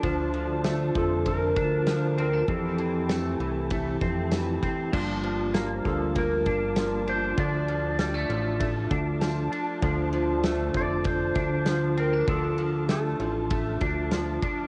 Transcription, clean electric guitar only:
X:1
M:4/4
L:1/16
Q:1/4=98
K:Gdor
V:1 name="Clean electric guitar"
[F,D]2 F,2 A,2 F,4 D2 F,2 C D | [E,C]2 E,2 A,2 E,2 A,2 C2 E,2 C2 | [F,D]2 F,2 B,2 F,2 B,2 D2 F,2 D2 | [F,D]2 F,2 G, A, F,2 A,2 D2 F,2 D2 |
[F,D]2 F,2 A,2 F,4 D2 F,2 C D | [F,D]2 F,2 A,2 F,2 A,2 D2 F,2 D2 |]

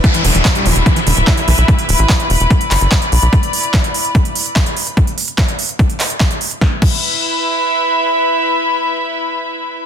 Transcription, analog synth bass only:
X:1
M:4/4
L:1/16
Q:1/4=146
K:C
V:1 name="Analog synth bass" clef=bass
z2 E,,, E,,, z2 E,,, E,,, z2 E,,, D,,, z2 B,,, B,,, | z2 D,,, A,,, z2 E,,, E,,, z2 G,,, G,,, z2 B,,, B,,, | z16 | z16 |
z16 | z16 |]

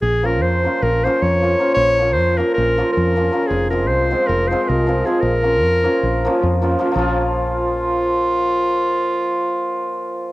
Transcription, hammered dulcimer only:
X:1
M:9/8
L:1/8
Q:3/8=104
K:Bbm
V:1 name="Hammered dulcimer"
z [F,B,DF] z [F,B,DF] z [F,B,DF] z [F,B,DF] [F,B,DF] | z [F,B,DF] z [F,B,DF] z [F,B,DF] z [F,B,DF] [F,B,DF] | z [F,A,CF] z [F,A,CF] z [F,A,CF] z [F,A,CF] [F,A,CF] | z [F,B,DF] z [F,B,DF] z [F,B,DF] z [F,B,DF] [F,B,DF] |
[F,B,DF]8- [F,B,DF]- | [F,B,DF]8- [F,B,DF] |]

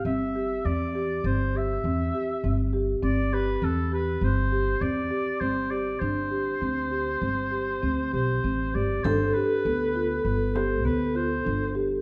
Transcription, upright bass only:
X:1
M:5/4
L:1/8
Q:1/4=100
K:G
V:1 name="Upright bass" clef=bass
G,,,2 E,,2 G,,,2 E,, z G,,,2 | G,,,2 E,,2 G,,,2 E,, z G,,,2 | G,,,2 D,,2 G,,,2 D,, B,,, A,,, G,,, | G,,, z D,,2 G,,,2 D,,2 G,,,2 |]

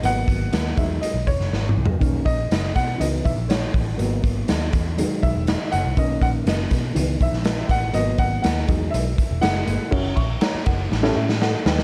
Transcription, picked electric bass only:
X:1
M:4/4
L:1/16
Q:1/4=121
K:B
V:1 name="Picked electric bass" clef=bass
G,,,2 G,,,2 D,,2 E,,2 z B,,, E,,, F,,, G,,,2 =C,, z | B,,,2 A,,,2 F,,,2 B,,2 C,,2 B,,, A,,,3 =A,,,2 | G,,,2 G,,,2 D,,2 E,,3 z B,,, E,,,2 z F,,, =C,, | B,,,2 A,,,2 F,,,2 B,,2 C,,2 B,,, A,,,3 =A,,,2 |
G,,,2 G,,,2 D,,2 E,,2 B,,,2 z E,,, F,,,2 =G,,, z | F,,,2 A,,,2 z2 F,,,2 =A,,,2 =A,,4 D,,2 |]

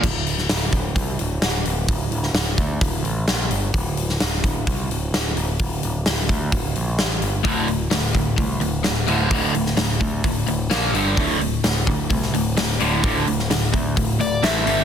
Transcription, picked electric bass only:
X:1
M:4/4
L:1/8
Q:1/4=129
K:Aphr
V:1 name="Picked electric bass" clef=bass
D,,,2 D,,, D,,, C,, D,,, D,,, D,,, | D,,, D,,, D,,, D,, D,,, A,,, B,,, G,,, | D,,,2 D,,, D,,, C,, D,,, D,,, D,,, | D,,, D,,, D,,, D,, D,,, B,,, A,,, G,,, |
D,,,2 D,,, D,,, C,, D,,, D,,, D,,, | D,,, D,,, D,,, D,, D,,, D,,, B,,, G,,, | D,,,2 D,,, D,,, C,, D,,, D,,, D,,, | D,,, D,,, D,,, D,, D,,, D,,, A,,, G,,, |]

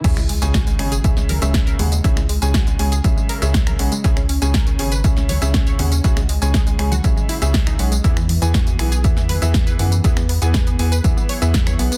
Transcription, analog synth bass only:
X:1
M:4/4
L:1/16
Q:1/4=120
K:C#m
V:1 name="Analog synth bass" clef=bass
C,,3 C,,3 G,,,2 C,,3 C,,3 D,,2 | C,,3 C,,3 C,,2 C,, z2 C,,3 B,,, z | C,,3 C,,3 G,,,2 C,,3 C,,3 D,,2 | C,,3 C,,3 C,,2 C,, z2 C,,3 B,,,2 |
E,,3 E,,3 B,,,2 E,,3 E,,3 F,,2 | E,,3 E,,3 E,,2 E,, z2 E,,3 B,,, z |]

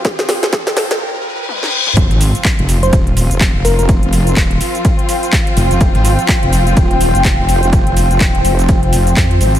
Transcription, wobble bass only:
X:1
M:4/4
L:1/16
Q:"Swing 16ths" 1/4=125
K:Cphr
V:1 name="Wobble bass" clef=bass
z16 | F,,, A,,,2 z2 F,,,3 E,,,3 F,,,2 F,,,3- | F,,, F,,,3 E,,,2 z8 F,,, F,,, | F,,, A,,,2 z2 F,,,3 E,,,3 F,,,2 F,,,3- |
F,,, F,,,3 E,,,2 F,,,4 F,,,2 F,,2 A,,,2 |]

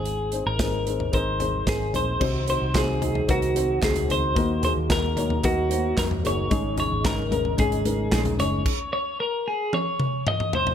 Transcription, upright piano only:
X:1
M:4/4
L:1/8
Q:1/4=112
K:Abmix
V:1 name="Upright piano"
[CEAc] [CEAc] [CEAB] [CEAc] [CEAB] [CEAc] [CEAB] [CEAc] | [CEGc] [CEGc] [CEGc] [CEGA] [CEGB] [CEGc] [CEGA] [CEGc] | [B,EGB] [B,EGA] [B,EGB] [B,EGd] [B,EGB] [B,EGc] [B,EGB] [B,EGA] | [A,DEA] [A,DEA] [A,DEB] [A,DEB] [A,DEA] [A,DEB] [A,DEA] [A,DEA] |
z8 |]
V:2 name="Upright piano" clef=bass
[A,,E,]2 z6 | C,3 z4 z | B,,3 z4 z | [A,,E,]3 z4 z |
z8 |]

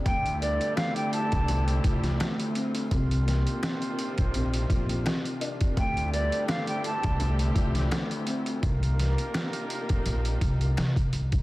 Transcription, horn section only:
X:1
M:4/4
L:1/8
Q:"Swing 16ths" 1/4=84
K:Dm
V:1 name="Horn section"
[DGAd]6- [DGAd] z | [CFGc]6- [CFGc] z | [DGAd]6- [DGAd] z | [B,FGB]6- [B,FGB] z |]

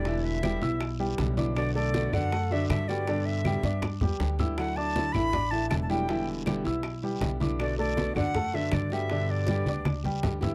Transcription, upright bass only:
X:1
M:4/4
L:1/8
Q:1/4=159
K:Bm
V:1 name="Upright bass" clef=bass
E,,,3 B,,,3 B,,,2- | B,,,3 F,,3 G,,2- | G,,3 G,,2 E,, D,,2- | D,,3 A,,,3 E,,,2- |
E,,,3 B,,,3 B,,,2- | B,,,3 F,,3 G,,2- | G,,3 D,,2 C,, D,,2 |]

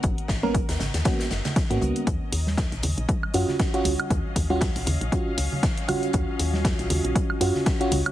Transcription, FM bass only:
X:1
M:4/4
L:1/16
Q:"Swing 16ths" 1/4=118
K:D#m
V:1 name="FM bass" clef=bass
G,,, z G,,,3 D,, G,,, D,, z2 F,,, z2 G,, C,, z | D,, z D,,3 A,,, D,, A,,, z2 F,, z3 C,, z | D,, z D,,3 A,,, D,, A,,, z2 C,, z4 z | D,, z D,,3 A,,, D,, A,,, z2 F,, z3 C,, z |]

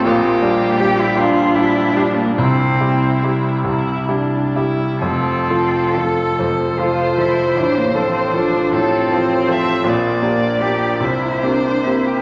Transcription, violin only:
X:1
M:6/8
L:1/8
Q:3/8=50
K:F
V:1 name="Violin"
G3 D3 | E3 E D E | A3 c3- | c3 A c e |
d3 c3 |]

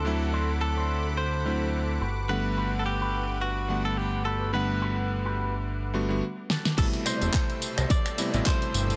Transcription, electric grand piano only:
X:1
M:4/4
L:1/16
Q:"Swing 16ths" 1/4=107
K:Ador
V:1 name="Electric grand piano"
[D,F,A,CE]8- [D,F,A,CE]2 [D,F,A,CE]4 z2 | [D,G,A,B,f]8- [D,G,A,B,f]2 [D,G,A,B,f]6 | [D,G,A,B,f]8- [D,G,A,B,f]2 [D,G,A,B,F] [D,G,A,B,F] z4 | [B,,C,G,A,E]8- [B,,C,G,A,E]2 [C,G,A,B,E] [B,,C,G,A,E]4- [B,,C,G,A,E] |]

